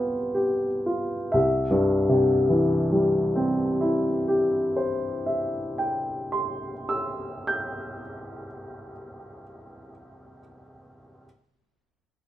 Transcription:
0.00 1.30 C2 soft
0.00 0.66 B3 soft
0.00 0.86 F4 soft
0.00 0.34 G4 soft
0.00 0.34 B4 medium
0.34 1.15 G4 soft
0.86 1.33 F4 soft
1.32 5.97 C2 soft
1.32 5.25 E5 soft
1.71 6.34 G2 soft
2.09 6.73 C3 soft
2.49 7.13 E3 soft
2.92 7.56 G3 soft
3.36 7.99 C4 soft
3.81 8.45 E4 soft
4.28 8.92 G4 soft
4.76 9.40 C5 soft
5.26 9.90 E5 soft
5.78 10.39 G5 soft
6.32 10.39 C6 soft
6.89 10.39 E6 soft
7.47 10.39 G6 soft

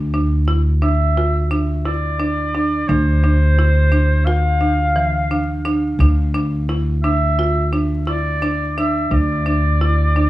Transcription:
0.00 2.85 D2 medium
0.14 0.40 D4 medium
0.48 0.75 E4 medium
0.82 1.09 D4 medium
0.82 1.47 E5 medium
1.17 1.44 F4 medium
1.51 1.78 D4 medium
1.85 2.12 E4 medium
1.85 2.89 D5 medium
2.19 2.47 D4 medium
2.54 2.81 D4 medium
2.88 5.96 D2 medium
2.88 3.16 D4 medium
2.88 4.27 C5 medium
3.24 3.51 D4 medium
3.59 3.85 E4 medium
3.92 4.19 D4 medium
4.25 4.54 F4 medium
4.25 5.64 F5 medium
4.61 4.88 D4 medium
4.96 5.23 E3 medium
5.31 5.58 D4 medium
5.65 5.92 D4 medium
5.99 9.06 D2 medium
5.99 6.27 D4 medium
6.35 6.62 D4 medium
6.69 6.96 E4 medium
7.03 7.31 D4 medium
7.03 7.68 E5 medium
7.39 7.65 F4 medium
7.73 7.99 D4 medium
8.07 8.34 E4 medium
8.07 8.73 D5 medium
8.42 8.69 D4 medium
8.78 9.04 D4 medium
8.78 9.14 E5 medium
9.11 10.30 D2 medium
9.11 9.38 D4 medium
9.11 10.30 D5 medium
9.46 9.73 D4 medium
9.81 10.08 E4 medium
10.16 10.30 D4 medium

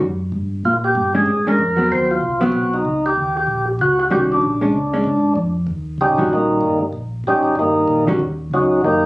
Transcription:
0.01 0.32 F#2 medium
0.32 0.63 G2 medium
0.65 0.95 A#2 medium
0.65 0.74 F4 medium
0.84 1.13 G4 medium
0.95 1.26 G2 medium
1.15 1.26 G#3 medium
1.15 1.26 C#4 medium
1.15 1.26 D4 medium
1.15 1.45 G#4 medium
1.26 1.57 G#2 medium
1.47 1.58 G#3 medium
1.47 1.58 C#4 medium
1.47 1.58 D4 medium
1.47 1.88 A#4 medium
1.58 1.89 F2 medium
1.77 2.19 F#3 medium
1.77 2.19 B3 medium
1.77 2.20 C4 medium
1.90 2.21 D#2 medium
1.90 2.11 C5 loud
2.11 2.40 F4 medium
2.21 2.52 C2 medium
2.41 2.82 F#3 medium
2.41 2.82 B3 medium
2.41 2.83 C4 medium
2.41 2.74 F#4 medium
2.52 2.83 B1 medium
2.74 3.05 D#4 medium
2.85 3.15 C#2 medium
3.06 3.36 G4 medium
3.16 3.47 D#2 medium
3.37 3.66 G4 medium
3.47 3.78 A#1 medium
3.79 4.10 C#2 medium
3.79 3.99 F#4 medium
4.00 4.05 F#4 medium
4.10 4.41 C2 medium
4.10 4.42 D#3 medium
4.10 4.42 G3 medium
4.10 4.42 C#4 medium
4.10 4.42 F#4 medium
4.10 4.20 G4 medium
4.32 5.34 D4 medium
4.42 4.72 A#1 medium
4.61 4.72 G#3 medium
4.61 4.73 C#4 medium
4.61 4.73 D4 medium
4.72 5.03 C#2 medium
4.93 5.04 G#3 medium
4.93 5.04 C#4 medium
4.93 5.05 D4 medium
5.04 5.35 G#2 medium
5.36 5.67 F2 medium
5.67 5.98 D#2 medium
5.98 6.09 C#2 medium
5.98 6.30 G3 medium
5.98 6.30 C#4 medium
5.98 6.29 D#4 medium
5.98 6.29 G4 medium
6.08 6.20 A#1 medium
6.18 6.29 G1 medium
6.18 6.60 D#3 medium
6.18 6.60 G3 medium
6.18 6.60 C#4 medium
6.18 6.60 F#4 medium
6.29 6.61 A#1 medium
6.29 6.79 A#3 soft
6.29 6.79 D#4 medium
6.33 6.79 D#3 soft
6.33 6.79 G3 soft
6.61 6.92 G1 medium
6.93 7.24 A#1 medium
7.24 7.42 G#1 medium
7.24 7.55 G4 medium
7.28 7.56 G3 medium
7.28 7.56 C#4 medium
7.28 7.56 D#4 medium
7.43 7.49 G#1 soft
7.56 7.87 G1 medium
7.56 8.05 D#3 medium
7.56 8.05 G3 medium
7.56 8.05 D#4 medium
7.60 8.05 A#3 medium
7.88 8.18 A#1 medium
8.07 8.18 D#3 medium
8.07 8.19 G3 medium
8.07 8.19 C#4 medium
8.07 8.19 F#4 medium
8.19 8.50 D#2 medium
8.51 8.82 C#2 medium
8.51 8.82 F#3 medium
8.51 8.82 C#4 medium
8.51 8.82 D#4 medium
8.51 8.82 F#4 medium
8.81 9.06 F#2 medium
8.81 9.06 D#3 medium
8.81 9.06 A#3 medium
8.81 9.06 D#4 medium
8.81 9.06 G4 medium

